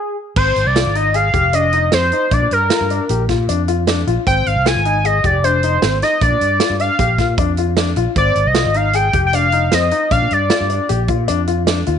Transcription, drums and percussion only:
0.36 kick medium
0.36 crash medium
0.56 closed hi-hat medium
0.76 snare loud
0.76 closed hi-hat medium
0.95 closed hi-hat medium
1.14 closed hi-hat medium
1.34 kick medium
1.34 closed hi-hat medium
1.53 closed hi-hat medium
1.73 closed hi-hat medium
1.92 snare medium
1.92 closed hi-hat medium
2.12 closed hi-hat medium
2.31 kick medium
2.31 closed hi-hat medium
2.51 closed hi-hat medium
2.70 snare loud
2.70 closed hi-hat medium
2.90 closed hi-hat medium
3.09 closed hi-hat medium
3.29 kick medium
3.29 snare soft
3.29 closed hi-hat medium
3.49 closed hi-hat medium
3.68 closed hi-hat medium
3.87 snare medium
3.87 closed hi-hat medium
4.07 closed hi-hat medium
4.27 kick medium
4.27 closed hi-hat medium
4.46 closed hi-hat medium
4.66 snare medium
4.66 closed hi-hat medium
4.85 closed hi-hat medium
5.05 closed hi-hat medium
5.24 kick medium
5.24 closed hi-hat medium
5.44 closed hi-hat medium
5.63 closed hi-hat medium
5.82 snare loud
5.82 closed hi-hat medium
6.02 snare soft
6.02 closed hi-hat medium
6.21 kick medium
6.21 closed hi-hat medium
6.41 closed hi-hat medium
6.60 snare loud
6.60 closed hi-hat medium
6.80 closed hi-hat medium
6.99 kick loud
6.99 closed hi-hat medium
7.18 kick medium
7.18 snare soft
7.18 closed hi-hat medium
7.38 kick loud
7.38 closed hi-hat medium
7.57 closed hi-hat medium
7.77 snare loud
7.77 closed hi-hat medium
7.96 closed hi-hat medium
8.16 kick medium
8.16 closed hi-hat medium
8.35 closed hi-hat medium
8.55 snare loud
8.55 closed hi-hat medium
8.74 closed hi-hat medium
8.93 closed hi-hat medium
9.13 kick medium
9.13 closed hi-hat medium
9.33 closed hi-hat medium
9.52 closed hi-hat medium
9.72 snare medium
9.72 closed hi-hat medium
9.91 closed hi-hat medium
10.11 kick medium
10.11 closed hi-hat medium
10.31 closed hi-hat medium
10.50 snare loud
10.50 closed hi-hat medium
10.70 closed hi-hat medium
10.89 closed hi-hat medium
11.08 kick medium
11.08 closed hi-hat medium
11.28 closed hi-hat medium
11.47 closed hi-hat medium
11.67 snare medium
11.67 closed hi-hat medium
11.86 closed hi-hat medium

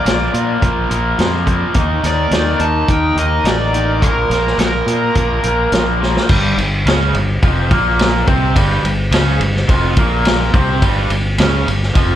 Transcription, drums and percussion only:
0.06 snare loud
0.06 closed hi-hat medium
0.34 closed hi-hat medium
0.62 kick loud
0.62 closed hi-hat medium
0.91 closed hi-hat medium
1.19 snare loud
1.19 closed hi-hat medium
1.47 kick medium
1.47 closed hi-hat medium
1.74 kick loud
1.74 closed hi-hat medium
2.04 snare soft
2.04 closed hi-hat medium
2.31 snare medium
2.31 closed hi-hat medium
2.59 closed hi-hat medium
2.88 kick medium
2.88 closed hi-hat medium
3.17 closed hi-hat medium
3.45 snare loud
3.45 closed hi-hat medium
3.74 closed hi-hat medium
4.02 kick medium
4.02 closed hi-hat medium
4.31 snare soft
4.31 closed hi-hat medium
4.47 snare soft
4.59 snare loud
4.59 closed hi-hat medium
4.88 closed hi-hat medium
5.15 kick loud
5.15 closed hi-hat medium
5.43 closed hi-hat medium
5.72 snare loud
5.72 closed hi-hat medium
6.03 snare medium
6.17 snare medium
6.29 kick loud
6.29 crash loud
6.58 ride medium
6.87 snare loud
6.87 ride medium
7.14 ride medium
7.43 kick medium
7.43 ride medium
7.71 kick loud
7.71 ride medium
7.99 snare loud
7.99 ride medium
8.27 kick loud
8.27 ride medium
8.56 kick medium
8.56 ride medium
8.85 ride medium
9.12 snare loud
9.12 ride loud
9.41 ride medium
9.56 snare soft
9.69 kick loud
9.69 ride medium
9.97 kick loud
9.97 ride medium
10.25 snare loud
10.25 ride medium
10.54 kick loud
10.54 ride medium
10.82 kick medium
10.82 ride medium
11.10 ride medium
11.38 snare loud
11.38 ride medium
11.68 ride medium
11.83 snare soft
11.95 kick loud
11.95 ride medium

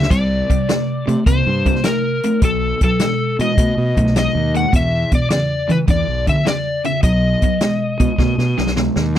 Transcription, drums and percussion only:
0.02 snare medium
0.11 kick loud
0.11 closed hi-hat medium
0.11 crash medium
0.50 kick medium
0.50 closed hi-hat medium
0.69 snare loud
0.69 closed hi-hat medium
1.08 closed hi-hat medium
1.26 kick loud
1.26 closed hi-hat medium
1.66 kick medium
1.66 closed hi-hat soft
1.75 snare soft
1.83 snare loud
1.83 closed hi-hat medium
2.23 closed hi-hat medium
2.42 kick loud
2.42 closed hi-hat medium
2.81 kick medium
2.81 closed hi-hat medium
2.99 snare loud
2.99 closed hi-hat medium
3.39 closed hi-hat medium
3.58 kick loud
3.58 closed hi-hat medium
3.97 kick medium
3.97 closed hi-hat medium
4.07 snare soft
4.16 snare loud
4.16 closed hi-hat medium
4.55 closed hi-hat medium
4.73 kick loud
4.73 closed hi-hat medium
5.12 kick medium
5.12 closed hi-hat medium
5.30 snare loud
5.30 closed hi-hat medium
5.70 closed hi-hat medium
5.88 kick loud
5.88 closed hi-hat medium
6.27 kick medium
6.27 closed hi-hat medium
6.46 snare loud
6.46 closed hi-hat medium
6.84 closed hi-hat medium
7.03 kick loud
7.03 closed hi-hat medium
7.42 kick medium
7.42 closed hi-hat medium
7.60 snare medium
7.60 closed hi-hat medium
8.00 kick medium
8.00 closed hi-hat medium
8.18 kick loud
8.18 snare medium
8.38 snare medium
8.58 snare medium
8.67 snare medium
8.76 snare medium
8.96 snare medium
9.15 snare medium

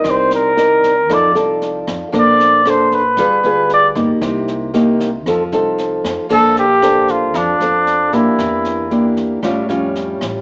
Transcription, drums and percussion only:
0.04 kick medium
0.04 cross-stick medium
0.04 snare soft
0.31 snare soft
0.57 snare soft
0.83 kick soft
0.83 snare soft
1.10 kick medium
1.10 cross-stick medium
1.10 snare soft
1.36 snare soft
1.62 snare soft
1.87 kick soft
1.87 cross-stick medium
1.87 snare soft
2.13 kick medium
2.13 snare soft
2.40 snare soft
2.66 cross-stick medium
2.66 snare soft
2.91 kick soft
2.91 snare soft
3.17 kick medium
3.17 cross-stick medium
3.17 snare soft
3.44 snare soft
3.70 snare soft
3.96 kick soft
3.96 snare soft
4.22 kick medium
4.22 cross-stick medium
4.22 snare soft
4.48 snare soft
4.74 snare soft
5.00 kick soft
5.00 snare soft
5.26 kick medium
5.26 cross-stick medium
5.26 snare soft
5.52 snare soft
5.78 snare soft
6.04 kick soft
6.04 cross-stick medium
6.04 snare soft
6.30 kick medium
6.30 snare soft
6.30 crash medium
6.56 snare soft
6.82 cross-stick medium
6.82 snare soft
7.08 kick soft
7.08 snare soft
7.34 kick medium
7.34 cross-stick medium
7.34 snare soft
7.60 snare soft
7.87 snare soft
8.13 kick soft
8.13 snare soft
8.38 kick medium
8.38 cross-stick medium
8.38 snare soft
8.64 snare soft
8.91 snare soft
9.17 kick soft
9.17 snare soft
9.43 kick medium
9.43 cross-stick medium
9.43 snare soft
9.69 snare soft
9.95 snare soft
10.21 kick soft
10.21 cross-stick medium
10.21 snare soft

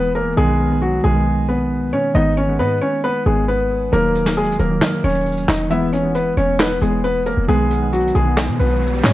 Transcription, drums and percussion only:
3.93 closed hi-hat medium
4.15 closed hi-hat medium
4.26 snare medium
4.37 closed hi-hat medium
4.45 closed hi-hat medium
4.52 closed hi-hat medium
4.59 closed hi-hat medium
4.82 snare loud
4.82 clap loud
5.04 closed hi-hat medium
5.09 closed hi-hat medium
5.15 closed hi-hat medium
5.21 closed hi-hat soft
5.26 closed hi-hat medium
5.32 closed hi-hat medium
5.37 closed hi-hat medium
5.43 closed hi-hat medium
5.48 snare loud
5.48 clap medium
5.71 closed hi-hat medium
5.93 closed hi-hat medium
6.15 closed hi-hat medium
6.37 closed hi-hat medium
6.59 snare loud
6.59 clap loud
6.81 closed hi-hat medium
7.04 closed hi-hat medium
7.26 closed hi-hat medium
7.48 closed hi-hat medium
7.71 closed hi-hat medium
7.93 closed hi-hat medium
8.00 closed hi-hat medium
8.08 closed hi-hat medium
8.15 closed hi-hat medium
8.37 snare loud
8.37 clap loud
8.59 closed hi-hat medium
8.65 closed hi-hat medium
8.70 closed hi-hat medium
8.76 closed hi-hat soft
8.82 closed hi-hat medium
8.87 closed hi-hat medium
8.93 closed hi-hat medium
8.98 closed hi-hat medium
9.04 snare loud
9.04 clap medium

